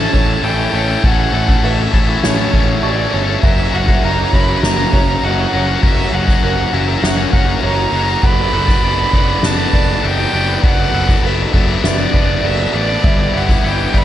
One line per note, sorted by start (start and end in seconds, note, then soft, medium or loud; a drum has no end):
0.00 0.14 A2 medium
0.00 8.19 C#3 medium
0.00 1.93 E3 medium
0.00 1.33 A3 medium
0.00 3.39 A3 medium
0.00 0.13 C#4 medium
0.00 0.14 C#4 medium
0.00 0.13 E4 medium
0.00 1.01 E4 medium
0.00 0.13 A4 medium
0.00 0.43 A4 medium
0.00 0.12 C#5 medium
0.00 0.45 A5 loud
0.12 0.36 A1 loud
0.12 0.41 A3 medium
0.12 0.43 C#4 medium
0.12 0.73 C#4 medium
0.12 0.44 E4 medium
0.12 0.44 A4 medium
0.12 0.72 C#5 medium
0.12 kick medium
0.43 0.65 A1 loud
0.43 0.71 A3 medium
0.43 0.73 C#4 loud
0.43 0.74 E4 loud
0.43 1.32 A4 medium
0.43 0.74 A4 loud
0.43 1.06 G5 medium
0.43 crash medium
0.73 0.96 A1 loud
0.73 1.01 A3 medium
0.73 3.13 C#4 medium
0.73 0.90 C#4 medium
0.73 0.88 E4 medium
0.73 0.86 A4 medium
0.73 1.34 C#5 medium
0.87 1.03 C#4 medium
0.87 1.04 E4 medium
0.87 1.04 A4 medium
1.02 1.26 A1 loud
1.02 2.53 A2 medium
1.02 1.31 A3 loud
1.02 1.33 C#4 loud
1.02 1.33 E4 loud
1.02 3.42 F#4 medium
1.02 1.33 A4 loud
1.02 1.66 F#5 loud
1.02 kick loud
1.02 crash medium
1.32 1.56 A1 medium
1.32 1.61 A3 medium
1.32 1.49 C#4 medium
1.32 1.48 E4 medium
1.32 2.82 A4 medium
1.32 1.46 A4 loud
1.47 1.62 C#4 medium
1.47 1.63 E4 medium
1.47 1.63 A4 medium
1.47 kick medium
1.62 1.86 A1 medium
1.62 1.91 A3 loud
1.62 1.93 C#4 loud
1.62 1.93 E4 loud
1.62 1.93 A4 loud
1.62 2.24 B4 medium
1.62 2.25 E5 medium
1.62 crash medium
1.92 2.15 A1 medium
1.92 3.46 E3 medium
1.92 2.38 A3 medium
1.92 2.09 C#4 medium
1.92 2.08 E4 medium
1.92 2.06 A4 medium
1.92 kick medium
2.07 2.39 C#4 medium
2.07 2.38 E4 medium
2.07 2.36 A4 medium
2.23 2.46 A1 loud
2.23 3.43 A3 medium
2.23 2.84 C#5 medium
2.23 2.83 E5 medium
2.23 snare loud
2.23 crash medium
2.37 2.52 C#4 medium
2.37 2.53 E4 medium
2.37 2.53 A4 medium
2.52 2.75 A1 loud
2.52 2.81 A3 medium
2.52 2.83 C#4 medium
2.52 2.83 E4 medium
2.52 2.83 A4 medium
2.52 kick medium
2.82 3.06 A1 loud
2.82 3.12 A3 medium
2.82 3.13 C#4 medium
2.82 3.14 E4 loud
2.82 3.43 A4 medium
2.82 3.14 A4 loud
2.82 3.14 D5 loud
2.82 3.43 C#6 medium
2.82 crash medium
3.13 3.36 G1 loud
3.13 3.41 A3 medium
3.13 4.03 C#4 medium
3.13 3.30 C#4 loud
3.13 3.28 E4 medium
3.13 3.26 A4 loud
3.13 3.43 C#5 medium
3.28 3.43 C#4 medium
3.28 3.44 E4 medium
3.28 3.41 A4 medium
3.43 3.65 F#1 loud
3.43 5.83 F#2 medium
3.43 3.72 F#3 loud
3.43 8.19 F#3 medium
3.43 8.19 A#3 medium
3.43 3.73 C#4 loud
3.43 5.81 E4 medium
3.43 3.74 F#4 loud
3.43 3.75 A#4 loud
3.43 3.76 E5 loud
3.43 4.03 E5 loud
3.43 kick loud
3.43 crash medium
3.72 3.96 F#1 medium
3.72 4.03 F#3 medium
3.72 3.89 C#4 medium
3.72 5.23 F#4 medium
3.72 3.89 F#4 medium
3.72 3.87 A#4 loud
3.72 4.05 F#5 loud
3.88 4.04 C#4 medium
3.88 4.05 F#4 medium
3.88 4.05 A#4 medium
3.88 kick medium
4.03 4.25 F#1 medium
4.03 4.33 F#3 loud
4.03 4.92 C#4 medium
4.03 4.34 C#4 loud
4.03 4.34 F#4 loud
4.03 4.35 A#4 loud
4.03 4.35 A#5 loud
4.03 crash medium
4.33 4.55 F#1 medium
4.33 5.84 E3 medium
4.33 4.92 F#3 medium
4.33 4.49 C#4 medium
4.33 4.48 F#4 medium
4.33 4.46 A#4 medium
4.33 4.92 C#5 medium
4.33 4.63 B5 loud
4.33 kick medium
4.48 4.78 C#4 medium
4.48 4.78 F#4 medium
4.48 4.76 A#4 medium
4.63 4.85 F#1 loud
4.63 6.13 A#3 medium
4.63 5.26 A#5 loud
4.63 snare loud
4.63 crash medium
4.77 4.92 C#4 medium
4.77 4.94 F#4 medium
4.77 4.93 A#4 medium
4.92 5.15 F#1 loud
4.92 5.21 F#3 medium
4.92 5.22 C#4 medium
4.92 5.52 C#4 medium
4.92 5.23 F#4 medium
4.92 5.23 A#4 medium
4.92 5.52 C#5 medium
4.92 kick medium
5.22 5.45 F#1 loud
5.22 5.52 F#3 medium
5.22 5.51 C#4 loud
5.22 5.53 F#4 loud
5.22 6.14 F#4 medium
5.22 5.53 A#4 loud
5.22 5.83 F#5 loud
5.22 crash medium
5.52 5.75 F#1 loud
5.52 5.81 F#3 medium
5.52 5.68 C#4 loud
5.52 6.42 C#4 medium
5.52 5.68 F#4 medium
5.52 5.65 A#4 loud
5.52 6.13 C#5 medium
5.67 5.82 C#4 medium
5.67 5.83 F#4 medium
5.67 5.83 A#4 medium
5.82 6.05 F#1 loud
5.82 9.34 F#2 medium
5.82 6.12 F#3 loud
5.82 6.12 C#4 medium
5.82 6.13 F#4 loud
5.82 8.21 F#4 medium
5.82 6.14 A#4 loud
5.82 6.15 E5 loud
5.82 kick loud
5.82 crash medium
6.12 6.35 F#1 medium
6.12 6.42 F#3 medium
6.12 6.28 C#4 medium
6.12 6.28 F#4 loud
6.12 7.63 F#4 medium
6.12 6.26 A#4 medium
6.12 6.74 F#5 loud
6.27 6.42 C#4 medium
6.27 6.43 F#4 medium
6.27 6.43 A#4 medium
6.27 kick medium
6.27 snare soft
6.42 6.65 F#1 medium
6.42 6.72 F#3 loud
6.42 6.72 C#4 medium
6.42 7.32 C#4 medium
6.42 6.74 F#4 loud
6.42 7.03 A#4 medium
6.42 6.73 A#4 loud
6.42 crash medium
6.72 6.95 F#1 medium
6.72 8.23 E3 medium
6.72 7.32 F#3 medium
6.72 6.89 C#4 medium
6.72 6.88 F#4 medium
6.72 6.86 A#4 medium
6.72 7.04 E5 medium
6.87 7.18 C#4 medium
6.87 7.18 F#4 medium
6.87 7.16 A#4 medium
7.02 7.25 F#1 medium
7.02 8.23 A#3 medium
7.02 7.63 E5 medium
7.02 7.32 F#5 loud
7.02 snare loud
7.02 crash medium
7.17 7.32 C#4 medium
7.17 7.33 F#4 medium
7.17 7.33 A#4 medium
7.32 7.55 F#1 loud
7.32 7.61 F#3 medium
7.32 7.62 C#4 medium
7.32 7.92 C#4 medium
7.32 7.63 F#4 medium
7.32 7.63 A#4 medium
7.32 7.61 F#5 medium
7.32 kick medium
7.62 7.85 F#1 loud
7.62 7.92 F#3 medium
7.62 7.92 C#4 loud
7.62 8.53 F#4 medium
7.62 7.93 F#4 loud
7.62 7.93 A#4 loud
7.62 8.24 C#5 medium
7.62 8.25 A#5 loud
7.62 crash medium
7.92 8.15 F#1 medium
7.92 8.21 F#3 medium
7.92 8.08 C#4 medium
7.92 8.23 C#4 medium
7.92 8.08 F#4 medium
7.92 8.06 A#4 medium
8.07 8.22 C#4 medium
8.07 8.23 F#4 medium
8.07 8.21 A#4 medium
8.22 8.45 F#1 loud
8.22 8.82 F#3 loud
8.22 9.13 F#3 medium
8.22 13.00 A3 medium
8.22 8.51 B3 loud
8.22 13.00 B3 medium
8.22 14.04 D4 medium
8.22 8.53 F#4 medium
8.22 8.53 B4 loud
8.22 8.54 D5 loud
8.22 8.83 F#5 loud
8.22 9.47 B5 loud
8.22 kick loud
8.22 crash medium
8.52 8.75 F#1 medium
8.52 8.82 B3 medium
8.52 8.69 F#4 medium
8.52 10.03 A4 medium
8.52 8.68 B4 medium
8.52 8.66 D5 medium
8.67 8.83 F#4 medium
8.67 8.83 B4 medium
8.67 8.84 D5 medium
8.67 kick medium
8.67 snare soft
8.82 9.05 F#1 medium
8.82 10.01 F#3 loud
8.82 9.11 B3 loud
8.82 9.73 D4 medium
8.82 9.12 F#4 loud
8.82 9.13 B4 loud
8.82 9.14 D5 loud
8.82 crash medium
9.12 9.35 F#1 medium
9.12 10.63 F#3 medium
9.12 9.72 B3 medium
9.12 9.28 F#4 medium
9.12 9.28 B4 medium
9.12 9.72 D5 medium
9.12 9.27 D5 medium
9.12 kick medium
9.27 9.58 F#4 medium
9.27 9.58 B4 medium
9.27 9.57 D5 medium
9.42 9.65 F#1 loud
9.42 10.97 B3 medium
9.42 10.07 A5 loud
9.42 snare loud
9.42 crash medium
9.57 9.72 F#4 medium
9.57 9.74 B4 medium
9.57 9.74 D5 medium
9.72 9.95 F#1 loud
9.72 10.02 B3 medium
9.72 10.34 D4 medium
9.72 10.02 F#4 medium
9.72 10.03 B4 medium
9.72 10.32 D5 medium
9.72 10.04 D5 medium
9.72 kick medium
10.02 10.25 F#1 loud
10.02 10.61 F#3 loud
10.02 10.32 B3 loud
10.02 10.32 F#4 loud
10.02 10.93 A4 medium
10.02 10.33 B4 loud
10.02 10.34 D5 loud
10.02 10.64 G5 loud
10.02 crash medium
10.32 10.55 F#1 medium
10.32 10.63 B3 medium
10.32 11.24 D4 medium
10.32 10.48 F#4 medium
10.32 10.48 B4 medium
10.32 10.94 D5 medium
10.32 10.47 D5 medium
10.47 10.62 F#4 medium
10.47 10.64 B4 medium
10.47 10.64 D5 medium
10.62 10.86 F#1 loud
10.62 11.21 F#3 loud
10.62 11.53 F#3 medium
10.62 10.92 B3 medium
10.62 10.92 F#4 loud
10.62 10.94 B4 loud
10.62 10.94 D5 loud
10.62 11.27 F#5 loud
10.62 kick loud
10.62 crash medium
10.92 11.16 F#1 medium
10.92 11.23 B3 medium
10.92 11.09 F#4 medium
10.92 12.43 A4 medium
10.92 11.09 B4 medium
10.92 11.07 D5 medium
11.07 11.22 F#4 medium
11.07 11.24 B4 medium
11.07 11.24 D5 medium
11.07 kick medium
11.07 snare soft
11.22 11.45 F#1 medium
11.22 11.83 F#3 medium
11.22 11.52 B3 loud
11.22 12.14 D4 medium
11.22 11.52 F#4 loud
11.22 11.84 B4 medium
11.22 11.53 B4 loud
11.22 11.54 D5 loud
11.22 11.87 E5 loud
11.22 crash medium
11.52 11.76 F#1 medium
11.52 13.04 F#3 medium
11.52 12.12 B3 medium
11.52 11.69 F#4 medium
11.52 11.68 B4 medium
11.52 11.67 D5 medium
11.52 kick medium
11.68 11.99 F#4 medium
11.68 11.99 B4 medium
11.68 11.97 D5 medium
11.84 12.06 F#1 loud
11.84 13.64 B3 medium
11.84 12.47 D5 loud
11.84 12.44 E5 medium
11.84 snare loud
11.84 crash medium
11.98 12.13 F#4 medium
11.98 12.14 B4 medium
11.98 12.15 D5 medium
12.12 12.36 F#1 loud
12.12 12.43 B3 medium
12.12 12.74 D4 medium
12.12 12.43 F#4 medium
12.12 12.44 B4 medium
12.12 12.45 D5 medium
12.12 kick medium
12.42 12.65 F#1 loud
12.42 13.01 F#3 loud
12.42 12.72 B3 loud
12.42 12.72 F#4 loud
12.42 13.04 A4 medium
12.42 12.74 B4 loud
12.42 13.04 D5 medium
12.42 12.74 D5 loud
12.42 12.78 E5 loud
12.42 crash medium
12.73 12.96 A1 medium
12.73 13.03 B3 medium
12.73 13.64 D4 medium
12.73 12.89 F#4 medium
12.73 12.88 B4 loud
12.73 12.87 D5 loud
12.73 13.38 D5 loud
12.88 13.03 F#4 medium
12.88 13.04 B4 medium
12.88 13.07 D5 medium
13.02 13.26 G1 loud
13.02 14.04 G2 medium
13.02 13.32 G3 loud
13.02 14.04 G3 medium
13.02 13.33 B3 loud
13.02 14.04 E4 medium
13.02 13.34 E4 loud
13.02 13.35 B4 loud
13.02 13.64 E5 loud
13.02 kick loud
13.02 crash medium
13.32 13.56 G1 medium
13.32 13.62 G3 medium
13.32 13.50 B3 medium
13.32 13.49 E4 medium
13.32 14.04 G4 medium
13.32 13.47 B4 loud
13.37 13.68 F#5 loud
13.48 13.63 B3 medium
13.48 13.63 E4 medium
13.48 13.64 B4 medium
13.48 kick medium
13.48 snare soft
13.62 13.86 G1 medium
13.62 13.92 G3 loud
13.62 13.93 B3 loud
13.62 14.04 B3 medium
13.62 13.94 E4 loud
13.62 13.95 B4 loud
13.62 13.99 G5 loud
13.62 crash medium
13.93 14.04 G1 medium
13.93 14.04 E3 medium
13.93 14.04 G3 medium
13.93 14.04 B3 medium
13.93 14.04 E4 medium
13.93 14.04 B4 medium
13.93 14.04 D5 medium
13.93 kick medium
13.97 14.04 B5 loud